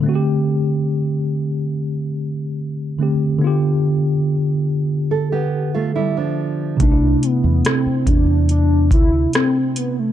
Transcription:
<<
  \new Staff \with { instrumentName = "Nylon-string guitar" } { \time 4/4 \key c \major \tempo 4 = 71 r1 | r2 a'16 <b g'>8 <a f'>16 <g e'>16 <f d'>8. | r1 | }
  \new Staff \with { instrumentName = "Soft synth lead" } { \time 4/4 \key c \major r1 | r1 | d'8 b8 c'8 d'8 d'8 e'8 c'8 b16 a16 | }
  \new Staff \with { instrumentName = "Tine electric piano" } { \time 4/4 \key c \major <d a c' fis' g'>2.~ <d a c' fis' g'>8 <d a c' g'>8 | <d b f' g'>1 | <c a d' ees' e'>1 | }
  \new Staff \with { instrumentName = "Fingered electric bass" } { \clef bass \time 4/4 \key c \major r1 | r1 | c,8 r16 e,16 r8 e,4 d,8 r4 | }
  \new DrumStaff \with { instrumentName = "Drums" } \drummode { \time 4/4 r4 r4 r4 r4 | r4 r4 r4 r4 | <hh bd>8 hh8 <hh ss>8 <hh bd>8 hh8 <hh bd>8 <hh ss>8 hh8 | }
>>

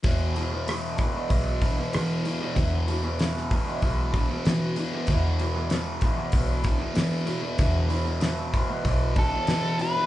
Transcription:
<<
  \new Staff \with { instrumentName = "Lead electric guitar" } { \time 4/4 \tempo 4 = 95 r1 | r1 | r1 | r2 r8 a'4 b'8 | }
  \new Staff \with { instrumentName = "Distorted electric guitar" } { \clef bass \time 4/4 <e, b, e>8 <e, b, e>16 <b, e>16 <e, b, e>8 <e, b, e>16 <b, e>16 <e, b, e>8 <e, b, e>16 <b, e>16 <e, b, e>8 <e, b, e>16 <b, e>16 | <e, b, e>8 <e, b, e>16 <b, e>16 <e, b, e>8 <e, b, e>16 <b, e>16 <e, b, e>8 <e, b, e>16 <b, e>16 <e, b, e>8 <e, b, e>16 <b, e>16 | <e, b, e>8 <e, b, e>16 <b, e>16 <e, b, e>8 <e, b, e>16 <b, e>16 <e, b, e>8 <e, b, e>16 <b, e>16 <e, b, e>8 <e, b, e>16 <b, e>16 | <e, b, e>8 <e, b, e>16 <b, e>16 <e, b, e>8 <e, b, e>16 <b, e>16 <e, b, e>8 <e, b, e>16 <b, e>16 <e, b, e>8 <e, b, e>16 <b, e>16 | }
  \new Staff \with { instrumentName = "Picked electric bass" } { \clef bass \time 4/4 e,2 b,,4 e4 | e,2 b,,4 e4 | e,2 b,,4 e4 | e,2 b,,4 e4 | }
  \new DrumStaff \with { instrumentName = "Drums" } \drummode { \time 4/4 <hho bd>8 hho8 <hho ss>8 <hho bd>8 <hho bd>8 <hho bd>8 <hho ss>8 hho8 | <hho bd>8 hho8 <hho sn>16 sn16 <hho bd>8 <hho bd>8 <hho bd>8 <hho sn>8 hho8 | <hho bd>8 hho8 <hho sn>8 <hho bd>8 <hho bd>8 <hho bd>8 <hho sn>8 hho8 | <hho bd>8 hho8 <hho sn>8 <hho bd>8 <hho bd>8 <hho bd>8 <hho sn>8 hho8 | }
>>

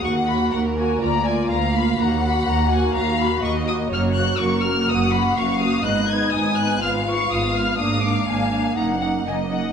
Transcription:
<<
  \new Staff \with { instrumentName = "Violin section" } { \time 4/4 \key ees \minor \tempo 4 = 124 des'''8 ces'''8 ges''8 aes''8 bes''8 aes''8 bes''8 ces'''8 | bes''8 ces'''8 bes''8 aes''8 bes''8 ces'''8 des'''8 ees'''8 | f'''8 ges'''8 des'''8 f'''8 ees'''8 ces'''8 des'''8 ees'''8 | ges'''8 aes'''8 ees'''8 ges'''8 f'''8 des'''8 ees'''8 f'''8 |
ees'''8 d'''8 aes''4 bes''8 ges''8 aes''8 ges''8 | }
  \new Staff \with { instrumentName = "Violin section" } { \time 4/4 \key ees \minor ges''4 bes'4 d''4 f''4 | ges''2 f''4 ees''4 | des''4 bes'4 ges''4 f''4 | ees''4 aes''4 f''2 |
f''2 ges''4 ees''4 | }
  \new Staff \with { instrumentName = "Viola section" } { \time 4/4 \key ees \minor <bes ges'>8 <bes ges'>4 <bes ges'>8 <bes f'>8 <bes f'>4 <bes f'>8 | <bes ges'>8 <bes ges'>4 <bes ges'>4 <bes ges'>4 <bes ges'>8 | <bes ges'>8 <bes ges'>8 <bes ges'>8 <bes ges'>8 <bes ges'>8 <bes ges'>8 <bes ges'>8 <bes ges'>8 | <ces' ees'>8 <ces' ees'>8 <ces' ees'>8 <ces' ees'>8 <ces' f'>8 <ces' f'>8 <ces' f'>8 <ces' f'>8 |
<bes d'>8 <bes d'>8 <bes d'>8 <bes d'>8 <bes ees'>8 <bes ees'>8 <bes ees'>8 <bes ees'>8 | }
  \new Staff \with { instrumentName = "Cello section" } { \clef bass \time 4/4 \key ees \minor ees,4 ees,4 d,4 d,4 | ees,4 ees,4 ees,4 ees,4 | ges,4 ges,4 ges,4 ges,4 | aes,4 aes,4 aes,4 aes,4 |
aes,4 aes,4 ges,4 ges,4 | }
  \new Staff \with { instrumentName = "Double bass section" } { \clef bass \time 4/4 \key ees \minor ees,4 ees,4 d,4 d,4 | ees,4 ees,4 ees,4 ees,4 | ges,,4 ges,,4 ges,,4 ges,,4 | aes,,4 aes,,4 aes,,4 aes,,4 |
aes,,4 aes,,4 ges,,4 ges,,4 | }
>>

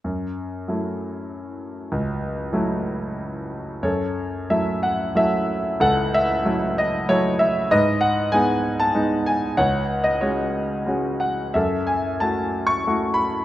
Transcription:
<<
  \new Staff \with { instrumentName = "Grand piano" } { \time 3/4 \key fis \dorian \tempo 4 = 94 << { r2. | r2. | cis''4 e''8 fis''8 e''4 | fis''8 e''4 dis''8 cis''8 e''8 |
dis''8 fis''8 gis''8. a''8. gis''8 | fis''8. dis''16 cis''4 r8 fis''8 | e''8 gis''8 a''8. cis'''8. b''8 | } \\ { r2. | r2. | a'4. r4. | a'4. r4. |
b'4. r4. | cis''4. r4. | a'4. r4. | } >> }
  \new Staff \with { instrumentName = "Grand piano" } { \time 3/4 \key fis \dorian fis,4 <fis a e'>2 | cis,4 <fis a e'>2 | fis,4 <fis a e'>4 <fis a e'>4 | cis,4 <fis a e'>4 <fis a e'>4 |
gis,4 <gis b dis'>4 <gis b dis'>4 | cis,4 <gis cis' fis'>4 <gis cis' fis'>4 | fis,4 <a e' fis'>4 <a e' fis'>4 | }
>>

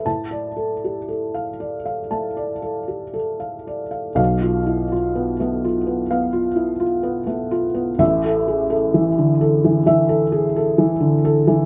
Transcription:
<<
  \new Staff \with { instrumentName = "Felt piano" } { \time 4/4 \key d \dorian \tempo 4 = 63 << { a''8 r2. r8 | \key f \lydian f''8 r2. r8 | e''8 r2. r8 | } \\ { r16 d''16 a'16 g'16 a'16 f''16 d''16 f''16 a''16 d''16 a'16 g'16 a'16 f''16 d''16 f''16 | r16 f'16 e'16 f'16 b16 a16 f'16 b16 f''16 f'16 e'16 f'16 b16 a16 f'16 b16 | r16 a'16 gis'16 a'16 e16 d16 a'16 e16 e''16 a'16 gis'16 a'16 e16 d16 a'16 e16 | } >> }
  \new Staff \with { instrumentName = "Felt piano" } { \clef bass \time 4/4 \key d \dorian a,2 a8 r4. | \key f \lydian <b,, b,>4~ <b,, b,>16 b8 r16 b8 r8. b8 r16 | <a,, a,>2 e8 r4. | }
>>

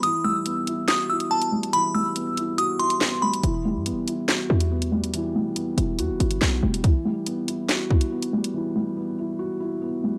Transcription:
<<
  \new Staff \with { instrumentName = "Synth bell" } { \time 4/4 \key e \minor \tempo 4 = 141 dis'''8 e'''4. dis'''8 e'''8 a''8 r8 | b''8 e'''4. dis'''8 c'''4 b''8 | r1 | r1 |
r1 | r1 | }
  \new Staff \with { instrumentName = "Felt piano" } { \time 4/4 \key e \minor e8 g8 b8 e'8 fis'8 e'8 b8 g8 | e8 g8 b8 e'8 fis'8 e'8 b8 g8 | e8 g8 b8 e'8 fis'8 e'8 b8 g8 | e8 g8 b8 e'8 fis'8 e'8 b8 g8 |
e8 g8 b8 e'8 fis'8 e'8 b8 g8 | e8 g8 b8 e'8 fis'8 e'8 b8 g8 | }
  \new Staff \with { instrumentName = "808-style bass" } { \clef bass \time 4/4 \key e \minor r1 | r1 | e,,8. g,16. e,,16. r4 e,4.~ | e,8 b,8 e,8 e,,8 e,16 e,,16 g,,8 b,,8 e,,8 |
r1 | r1 | }
  \new DrumStaff \with { instrumentName = "Drums" } \drummode { \time 4/4 hh4 hh8 hh8 <hc hh sn>8. hh16 r16 hh8 hh16 | hh4 hh8 hh8 hh8 hh16 hh16 <hc sn>8. hh16 | hh4 hh8 hh8 <hc hh sn>8. hh16 r16 hh8 hh16 | hh4 hh8 hh8 hh8 hh16 hh16 <hc sn>8. hh16 |
<hh bd>4 hh8 hh8 <hc hh sn>8 bd16 hh16 r16 hh8 hh16 | r4 r4 r4 r4 | }
>>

